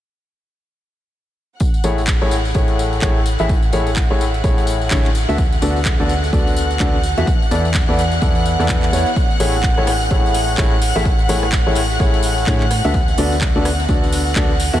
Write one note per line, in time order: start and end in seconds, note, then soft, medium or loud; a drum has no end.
1.60 14.80 F#5 medium
1.60 14.80 F#6 medium
1.60 kick loud
1.60 tambourine medium
1.74 tambourine soft
1.84 2.19 A1 medium
1.84 1.99 A2 medium
1.84 1.99 A3 medium
1.84 1.99 E4 medium
1.84 1.99 G#4 medium
1.84 1.99 C#5 medium
1.84 tambourine medium
1.98 tambourine soft
2.07 kick loud
2.07 clap loud
2.07 tambourine soft
2.22 2.53 A1 medium
2.22 2.33 A2 medium
2.22 2.33 A3 medium
2.22 2.33 E4 medium
2.22 2.33 G#4 medium
2.22 2.33 C#5 medium
2.31 tambourine medium
2.45 tambourine soft
2.54 3.00 A1 medium
2.54 3.00 A2 medium
2.54 3.00 A3 medium
2.54 3.00 E4 medium
2.54 3.00 G#4 medium
2.54 3.00 C#5 medium
2.54 kick loud
2.54 tambourine soft
2.68 tambourine soft
2.79 tambourine medium
2.93 tambourine soft
3.02 3.37 A1 medium
3.02 3.17 A2 medium
3.02 3.17 A3 medium
3.02 3.17 E4 medium
3.02 3.17 G#4 medium
3.02 3.17 C#5 loud
3.02 kick loud
3.02 clap loud
3.02 tambourine medium
3.26 tambourine medium
3.39 3.71 A1 medium
3.39 3.51 A2 medium
3.39 3.51 A3 medium
3.39 3.51 E4 medium
3.39 3.51 G#4 medium
3.39 3.51 E5 medium
3.39 tambourine soft
3.49 kick loud
3.49 tambourine soft
3.62 tambourine soft
3.73 4.08 A1 medium
3.73 3.88 A2 medium
3.73 3.88 A3 medium
3.73 3.88 E4 medium
3.73 3.88 G#4 medium
3.73 3.88 C#5 medium
3.73 tambourine medium
3.87 tambourine soft
3.96 kick loud
3.96 clap loud
3.96 tambourine soft
4.10 4.42 A1 medium
4.10 4.22 A2 medium
4.10 4.22 A3 medium
4.10 4.22 E4 medium
4.10 4.22 G#4 medium
4.10 4.22 C#5 medium
4.21 tambourine medium
4.34 tambourine soft
4.44 4.89 A1 medium
4.44 4.89 A2 medium
4.44 4.89 A3 medium
4.44 4.89 E4 medium
4.44 4.89 G#4 medium
4.44 4.89 C#5 medium
4.44 kick loud
4.44 tambourine medium
4.58 tambourine soft
4.67 tambourine medium
4.81 tambourine soft
4.91 5.26 A1 medium
4.91 5.06 D3 medium
4.91 5.06 A3 medium
4.91 5.06 E4 medium
4.91 5.06 G#4 medium
4.91 5.06 C#5 medium
4.91 kick loud
4.91 clap loud
4.91 tambourine soft
5.05 clap soft
5.15 tambourine medium
5.29 5.60 D2 medium
5.29 5.40 D3 medium
5.29 5.40 B3 medium
5.29 5.40 F#4 medium
5.29 5.40 A4 medium
5.29 5.40 E5 medium
5.29 tambourine soft
5.38 kick loud
5.38 tambourine soft
5.52 tambourine soft
5.62 5.97 D2 loud
5.62 5.77 D3 medium
5.62 5.77 B3 medium
5.62 5.77 F#4 medium
5.62 5.77 A4 medium
5.62 5.77 D5 medium
5.62 tambourine medium
5.76 tambourine soft
5.85 kick loud
5.85 clap loud
5.85 tambourine soft
6.00 6.31 D2 medium
6.00 6.11 D3 medium
6.00 6.11 B3 medium
6.00 6.11 F#4 medium
6.00 6.11 A4 medium
6.00 6.11 D5 medium
6.09 tambourine medium
6.24 tambourine soft
6.33 6.78 D2 medium
6.33 6.78 D3 medium
6.33 6.78 B3 medium
6.33 6.78 F#4 medium
6.33 6.78 A4 medium
6.33 6.78 D5 medium
6.33 kick loud
6.33 tambourine soft
6.47 tambourine soft
6.56 tambourine loud
6.71 tambourine soft
6.79 7.15 D2 medium
6.79 6.95 D3 medium
6.79 6.95 B3 medium
6.79 6.95 F#4 medium
6.79 6.95 A4 medium
6.79 6.95 D5 loud
6.79 kick loud
6.79 clap loud
6.79 tambourine medium
7.03 tambourine medium
7.18 7.24 E2 medium
7.18 7.26 E3 medium
7.18 7.26 B3 medium
7.18 7.26 F#4 medium
7.18 7.26 A4 medium
7.18 7.26 E5 medium
7.18 tambourine soft
7.27 kick loud
7.27 tambourine medium
7.42 tambourine soft
7.51 7.86 E2 loud
7.51 7.66 E3 medium
7.51 7.66 B3 medium
7.51 7.66 E4 medium
7.51 7.66 A4 medium
7.51 7.66 D5 medium
7.51 tambourine medium
7.65 tambourine soft
7.74 kick loud
7.74 clap loud
7.74 tambourine medium
7.88 8.20 E2 medium
7.88 8.00 E3 medium
7.88 8.00 B3 medium
7.88 8.00 E4 medium
7.88 8.00 A4 medium
7.88 8.00 D5 medium
7.99 tambourine medium
8.12 tambourine soft
8.22 8.57 E2 medium
8.22 8.57 E3 medium
8.22 8.57 B3 medium
8.22 8.57 E4 medium
8.22 8.57 A4 medium
8.22 8.57 D5 medium
8.22 kick loud
8.22 tambourine medium
8.35 tambourine soft
8.45 tambourine medium
8.59 8.91 E2 medium
8.59 8.90 E3 medium
8.59 8.90 B3 medium
8.59 8.90 E4 medium
8.59 8.90 A4 medium
8.59 8.90 D5 medium
8.59 tambourine soft
8.69 kick loud
8.69 clap loud
8.69 tambourine medium
8.83 clap soft
8.83 tambourine soft
8.93 9.05 E2 medium
8.93 9.08 B3 medium
8.93 9.08 E4 medium
8.93 9.08 A4 medium
8.93 9.08 C#5 medium
8.93 tambourine medium
9.06 tambourine soft
9.16 kick loud
9.16 tambourine soft
9.31 tambourine soft
9.40 9.75 A1 medium
9.40 9.55 A2 medium
9.40 9.55 A3 medium
9.40 9.55 E4 medium
9.40 9.55 G#4 medium
9.40 9.55 C#5 medium
9.40 open hi-hat medium
9.40 tambourine medium
9.54 tambourine soft
9.63 kick loud
9.63 clap loud
9.63 tambourine soft
9.77 10.09 A1 medium
9.77 9.89 A2 medium
9.77 9.89 A3 medium
9.77 9.89 E4 medium
9.77 9.89 G#4 medium
9.77 9.89 C#5 loud
9.87 cross-stick medium
9.87 open hi-hat loud
9.87 tambourine medium
10.01 tambourine soft
10.11 10.56 A1 medium
10.11 10.56 A2 medium
10.11 10.56 A3 medium
10.11 10.56 E4 medium
10.11 10.56 G#4 medium
10.11 10.56 C#5 medium
10.11 kick loud
10.11 tambourine soft
10.26 tambourine soft
10.34 open hi-hat medium
10.34 tambourine medium
10.48 tambourine soft
10.58 10.93 A1 medium
10.58 10.73 A2 medium
10.58 10.73 A3 medium
10.58 10.73 E4 medium
10.58 10.73 G#4 medium
10.58 10.73 C#5 loud
10.58 kick loud
10.58 clap loud
10.58 tambourine soft
10.81 open hi-hat loud
10.81 tambourine medium
10.96 11.27 A1 medium
10.96 11.07 A2 medium
10.96 11.07 A3 medium
10.96 11.07 E4 medium
10.96 11.07 G#4 medium
10.96 11.07 E5 medium
10.96 tambourine soft
11.05 kick loud
11.05 tambourine soft
11.19 tambourine soft
11.29 11.64 A1 medium
11.29 11.44 A2 medium
11.29 11.44 A3 medium
11.29 11.44 E4 medium
11.29 11.44 G#4 medium
11.29 11.44 C#5 medium
11.29 open hi-hat medium
11.29 tambourine medium
11.43 cross-stick medium
11.43 tambourine soft
11.52 kick loud
11.52 clap loud
11.52 tambourine soft
11.66 11.98 A1 medium
11.66 11.78 A2 medium
11.66 11.78 A3 medium
11.66 11.78 E4 medium
11.66 11.78 G#4 medium
11.66 11.78 C#5 loud
11.75 open hi-hat loud
11.75 tambourine medium
11.91 tambourine soft
12.00 12.45 A1 medium
12.00 12.45 A2 medium
12.00 12.45 A3 medium
12.00 12.45 E4 medium
12.00 12.45 G#4 medium
12.00 12.45 C#5 medium
12.00 kick loud
12.00 tambourine soft
12.14 tambourine soft
12.23 open hi-hat medium
12.23 tambourine medium
12.38 tambourine soft
12.47 12.82 A2 medium
12.47 12.62 D3 medium
12.47 12.62 A3 medium
12.47 12.62 E4 medium
12.47 12.62 G#4 medium
12.47 12.62 C#5 loud
12.47 kick loud
12.47 clap loud
12.47 tambourine medium
12.61 clap soft
12.71 cross-stick medium
12.71 open hi-hat medium
12.71 tambourine medium
12.84 13.16 D2 medium
12.84 12.96 D3 medium
12.84 12.96 B3 medium
12.84 12.96 F#4 medium
12.84 12.96 A4 medium
12.84 12.96 E5 medium
12.84 tambourine soft
12.94 kick loud
12.94 tambourine soft
13.08 tambourine soft
13.18 13.53 D2 medium
13.18 13.33 D3 medium
13.18 13.33 B3 medium
13.18 13.33 F#4 medium
13.18 13.33 A4 medium
13.18 13.33 D5 medium
13.18 open hi-hat medium
13.18 tambourine medium
13.32 tambourine soft
13.41 kick loud
13.41 clap loud
13.41 tambourine soft
13.55 13.87 D2 medium
13.55 13.67 D3 medium
13.55 13.67 B3 medium
13.55 13.67 F#4 medium
13.55 13.67 A4 medium
13.55 13.67 D5 medium
13.65 cross-stick medium
13.65 open hi-hat medium
13.65 tambourine medium
13.80 tambourine soft
13.89 14.34 D2 medium
13.89 14.34 D3 medium
13.89 14.34 B3 medium
13.89 14.34 F#4 medium
13.89 14.34 A4 medium
13.89 14.34 D5 medium
13.89 kick loud
13.89 tambourine soft
14.04 tambourine soft
14.12 open hi-hat medium
14.12 tambourine medium
14.27 tambourine soft
14.36 14.71 D2 medium
14.36 14.51 D3 medium
14.36 14.51 B3 medium
14.36 14.51 F#4 medium
14.36 14.51 A4 medium
14.36 14.51 D5 loud
14.36 kick loud
14.36 clap loud
14.36 tambourine soft
14.60 open hi-hat medium
14.60 tambourine medium
14.73 14.80 E2 loud
14.73 14.80 E3 medium
14.73 14.80 B3 medium
14.73 14.80 F#4 medium
14.73 14.80 A4 medium
14.73 14.80 E5 medium
14.73 tambourine soft